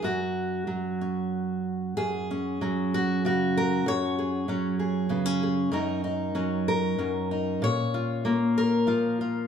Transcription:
Already playing: F#3
0.02 F#2 F#4
0.67 F#3
1.01 C#4
1.97 F#2 G#4
2.31 C#4
2.61 F#3 C#4
2.94 F#4
3.25 C#3 F#4
3.57 A#4
3.86 F#2 C#5
4.19 G#4
4.48 F#3 C#4
4.79 G#4
5.09 C#3 B3
5.26 C#4
5.43 G#4
5.72 F#2 C#4 D#4 A#4
6.04 D#4
6.35 F#3 C#4
6.68 A#4
6.98 F#2 C#4
7.31 D#4
7.62 A#2 C#5
7.94 F4
8.25 A#3 F4
8.58 A#4
8.87 F3 F4
9.21 F4

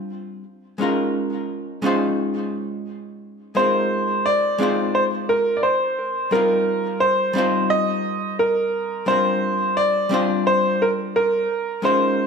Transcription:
Already playing: G3 C4 D4 F4 C5
0.78 G#3 C#4 D#4 F4
0.83 A#4
1.82 G#3 C#4 D#4 F4
1.86 C5
3.55 G#3 C4 D#4 F4 C5
3.59 A#4
4.26 D5
4.58 G#3 C4 D#4 F4
4.63 C5
4.95 C5
5.29 A#4
5.57 D5
5.63 C5
6.31 G3 C4 D#4 F4 A#4
6.35 A#4
7.00 C5
7.33 G3 C4 D#4 F4
7.38 C5
7.70 D#5
8.39 A#4
9.06 G3 C4 D4 F4 C5
9.10 A#4
9.77 D5
10.09 G3 C4 D4 F4
10.14 C5
10.47 C5
10.82 A#4
11.16 A#4
11.82 G#3 C#4 D#4 F4 C5
11.86 A#4

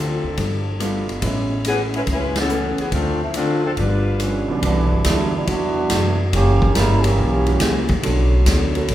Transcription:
Already playing: D2 D3 F3 A3 C4 D4 F4 A4
0.23 D2
0.37 G1 G3 B3 F4 A4, kick, ride
0.80 G3 A3 B3 D4 F4 A4, cross-stick, hi-hat pedal, ride
1.08 G1, ride
1.22 A1 G#3 A3 B3 C#4 E4 G#4 B4, kick, ride
1.65 A3 B3 C#4 G#4 B4, hi-hat pedal, ride
1.69 E3 C#4
1.94 G#3 C#4 E4 B4, ride
2.07 C#2 A3 C#4 G#4 B4, kick, ride
2.11 G#3 C#4 E4 B4
2.36 E3 B3 A4, snare, ride
2.40 C#4
2.49 A3 C#4 G#4 B4, hi-hat pedal
2.78 E3 B3 C#4 G#4, muted upright bass stroke, ride
2.92 D2 D3 A3 C4 D4 F4, kick, ride
3.22 F3 A3 C4 E4
3.34 D3 A3 C4 D4 F4, hi-hat pedal, ride
3.65 F3 C4 D4 A4
3.77 G1 G2 F3 G3 B3 D4 F4 B4, kick, ride
4.20 G2 F3 G3 B3 C#4 D4, cross-stick, hi-hat pedal, ride
4.48 C2 E3 F#3 B3 D4, muted upright bass stroke
4.62 C2 C3 E3 F#3 G3 B3 D4, kick, ride
4.66 E4
4.76 B1
4.90 G1
5.04 D2 C3 E3 G3 B3 D4 E4 F#4, kick, snare, hi-hat pedal, ride
5.09 F#3 E4
5.34 E3 G3 B3 D4
5.47 E2 C3 E3 F#3 B3 D4 E4 F#4, kick, ride
5.90 F#2 C3 F#3 B3 E4, kick, snare, hi-hat pedal, ride
6.33 F#1 E3 F#3 A#3 C#4 E4 G4, kick, ride
6.62 kick
6.75 G1 F#3 G3 A#3 C#4 E4 G4 A#4, kick, snare, hi-hat pedal, ride
7.03 E3 A#3 C#4 G4, ride
7.18 B1 F#3 A#3 E4 G4, kick
7.46 E3 G3 A#3 C#4 F#4, ride
7.60 C#2 F#3 A#3 E4 G4, kick, snare, hi-hat pedal, ride
7.89 kick, ride
8.03 B1 D3 A3 B3 C#4 D4 F#4 A4 C#5, kick, ride
8.46 D2 B3 D4 A4 C#5, kick, snare, hi-hat pedal, ride
8.75 D3 A3 B3 C#4 F#4, ride
8.88 A1 B3 D4 A4 C#5, kick, ride

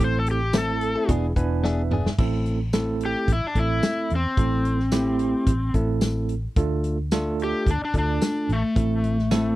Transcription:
0.00 A1 A3 C4 E4 A4
0.04 C5
0.19 A4
0.26 closed hi-hat
0.31 G4
0.53 E3 A3 C4 E4 A4, snare, closed hi-hat, tambourine
0.58 A4
0.81 closed hi-hat
0.96 C4 E4 A4
1.09 E1 B3 D4 E4 G#4, kick, closed hi-hat
1.36 E1 B3 D4 E4 B4 G#5, kick, closed hi-hat
1.64 B3 D4 G#4 E5, snare
1.91 B3 D4 G#4, mid tom
2.06 snare
2.18 A1 A3 C4 E4 A4, kick, crash
2.46 closed hi-hat
2.73 A3 C4 E4 A4, snare, closed hi-hat, tambourine
3.01 closed hi-hat
3.05 G4
3.28 A1, kick, closed hi-hat
3.33 E4
3.44 D4, muted fingered electric bass stroke
3.55 A1 A3 C4 E4 A4, kick, closed hi-hat
3.59 E4
3.83 snare, closed hi-hat, tambourine
4.10 E2, closed hi-hat
4.15 C4
4.26 muted fingered electric bass stroke
4.37 A1 A3 C4 E4 A4, kick, closed hi-hat
4.65 closed hi-hat
4.80 snare
4.92 A3 C4 E4 G4, snare, closed hi-hat, tambourine
5.19 closed hi-hat
5.47 A1, kick, closed hi-hat
5.74 A1 A3 C4 E4 A4, kick, closed hi-hat
6.01 snare, closed hi-hat, tambourine
6.29 closed hi-hat
6.56 D2 A3 D4 F4 A4, kick, closed hi-hat
6.84 closed hi-hat
7.11 A3 D4 F4 A4, snare, closed hi-hat, tambourine
7.39 closed hi-hat
7.44 G4
7.67 D2 D4, kick, closed hi-hat
7.85 D4
7.94 D2 A3 D4 F4 A4, kick, closed hi-hat
7.98 D4
8.22 snare, closed hi-hat, tambourine
8.49 A1 A3, closed hi-hat
8.63 muted fingered electric bass stroke
8.76 A1 A3 C4 E4 A4, kick, closed hi-hat
9.04 closed hi-hat
9.19 snare
9.31 A3 C4 E4 A4, snare, closed hi-hat, tambourine

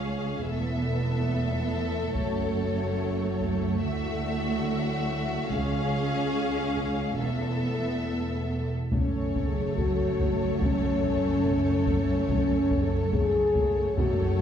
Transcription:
Already playing: C#2 G#3 C#4 F4 G#4 F5
0.48 E1 E2 A3 B3 E4 A4 E5
2.15 F#1 F#2 A3 F#4 C#5, taiko
3.40 taiko
3.82 D2 F#3 E4 F#4 E5
5.47 C#2 G#3 C#4 F4 G#4 F5, taiko
6.77 taiko
7.19 E1 E2 A3 B3 E4 A4 E5
8.92 F#1 F#2 A3 C#4 A4 C#5, taiko
9.36 taiko
9.48 G#4
9.76 F#4, taiko
10.20 taiko
10.59 C#4, taiko
11.03 taiko
11.46 taiko
11.87 taiko
12.27 C#4, taiko
12.71 taiko
12.84 A4
13.12 G#4, taiko
13.55 taiko
13.96 F#1 F#2 A3 F#4 A4 C#5, taiko

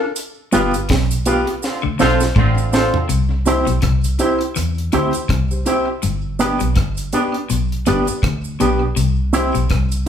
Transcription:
0.16 closed hi-hat, cabasa
0.52 G1 G2 B3 F4 G4 B4, closed hi-hat, cabasa
0.74 closed hi-hat, cabasa
0.89 B1 B2, kick, snare, closed hi-hat
1.11 closed hi-hat, cabasa
1.26 B3 F4 G4 B4, closed hi-hat, cabasa
1.47 closed hi-hat
1.62 D3 C4 F4, snare, cabasa
1.83 D2 D3
1.99 B1 B2 D3 C4 D4 F4 A4 C5, snare, cabasa
2.20 F4 C5, snare, cabasa
2.36 A1 A2 D3 C4 F4, kick, mid tom
2.58 cabasa
2.72 C4 D4 F4 A4 C5, snare, cabasa
2.94 floor tom
3.09 C2 C3, closed hi-hat, cabasa
3.45 C4 E4 G4 C5, closed hi-hat, cabasa
3.67 B1 B2, closed hi-hat, cabasa
3.82 C2 C3, kick, cross-stick, closed hi-hat
4.04 closed hi-hat, cabasa
4.19 C4 E4 G4 C5, closed hi-hat, cabasa
4.41 closed hi-hat
4.56 E2 E3, cross-stick, closed hi-hat, cabasa
4.78 closed hi-hat
4.92 D2 D3 C4 E4 G4 C5, closed hi-hat, cabasa
5.13 G4 C5, closed hi-hat, cabasa
5.29 C2 C3, kick, cross-stick, closed hi-hat
5.51 G4 C5, cabasa
5.66 C4 E4 G4 C5, closed hi-hat, cabasa
6.03 G1 G2, closed hi-hat, cabasa
6.39 B3 D4 G4 B4, closed hi-hat, cabasa
6.60 B1 B2, closed hi-hat, cabasa
6.76 G1 G2, kick, cross-stick, closed hi-hat
6.97 closed hi-hat, cabasa
7.13 B3 D4 G4 B4, closed hi-hat, cabasa
7.34 closed hi-hat
7.50 B1 B2, closed hi-hat, cabasa
7.72 closed hi-hat
7.86 G1 G2 B3 D4 G4 B4, closed hi-hat, cabasa
8.07 G4 B4, muted clean electric guitar stroke, closed hi-hat, cabasa
8.23 D2 D3, kick, cross-stick, closed hi-hat
8.44 cabasa
8.60 B1 B2 B3 D4 G4 B4, closed hi-hat, cabasa
8.96 C2 C3, closed hi-hat, cabasa
9.33 C4 E4 G4 C5, closed hi-hat, cabasa
9.54 B1 B2, closed hi-hat, cabasa
9.70 C2 C3, kick, cross-stick, closed hi-hat
9.92 closed hi-hat, cabasa

